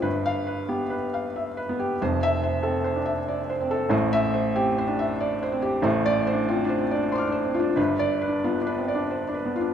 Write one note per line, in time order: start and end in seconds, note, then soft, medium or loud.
0.02 1.94 G1 medium
0.02 1.94 G2 medium
0.02 0.38 B4 medium
0.26 0.61 F5 medium
0.47 0.82 B4 medium
0.69 0.95 B3 medium
0.69 1.04 G4 medium
0.90 1.25 B4 medium
1.14 1.48 F5 medium
1.36 1.57 E5 medium
1.57 1.91 B4 medium
1.69 1.94 B3 medium
1.80 2.00 G4 medium
2.01 3.89 F1 medium
2.01 3.89 F2 medium
2.01 2.35 C5 medium
2.23 2.56 E5 loud
2.43 2.77 C5 medium
2.63 2.89 C4 medium
2.63 2.98 A4 medium
2.84 3.19 C5 medium
2.96 3.12 D4 medium
3.05 3.40 E5 medium
3.28 3.49 D5 medium
3.50 3.84 C5 medium
3.61 3.86 C4 medium
3.71 3.92 A4 medium
3.89 5.79 A1 medium
3.89 5.80 A2 medium
3.89 4.26 C5 medium
4.13 4.47 E5 loud
4.34 4.69 C5 medium
4.55 4.81 C4 medium
4.55 4.90 G4 medium
4.78 5.12 C5 medium
4.88 5.04 D4 medium
4.99 5.33 E5 medium
5.21 5.42 D5 medium
5.43 5.77 C5 medium
5.52 5.78 C4 medium
5.62 5.84 G4 medium
5.82 7.73 A1 medium
5.82 7.74 A2 loud
5.82 6.18 C5 medium
6.06 6.40 D5 loud
6.27 6.62 C5 medium
6.32 6.59 D4 medium
6.48 6.75 C4 medium
6.48 6.83 F4 medium
6.65 6.91 D4 medium
6.69 7.04 C5 medium
6.81 6.97 C4 medium
6.91 7.22 D4 medium
6.91 7.26 D5 medium
7.12 7.31 C5 medium
7.12 7.73 C6 medium
7.12 7.75 D6 medium
7.18 7.76 F6 medium
7.27 7.54 D4 medium
7.32 7.68 C5 medium
7.45 7.71 C4 medium
7.54 7.77 F4 medium
7.59 7.77 D4 medium
7.76 9.74 G1 loud
7.76 9.74 G2 loud
7.76 8.12 B4 medium
7.99 8.35 D5 loud
8.22 8.57 B4 medium
8.28 8.54 D4 medium
8.44 8.71 B3 medium
8.44 8.79 F4 medium
8.61 8.87 D4 medium
8.67 9.02 B4 medium
8.78 8.94 C4 medium
8.88 9.24 D5 medium
8.95 9.21 D4 medium
9.11 9.33 C5 medium
9.28 9.55 D4 medium
9.34 9.70 B4 medium
9.45 9.72 B3 medium
9.56 9.74 F4 medium
9.61 9.74 D4 medium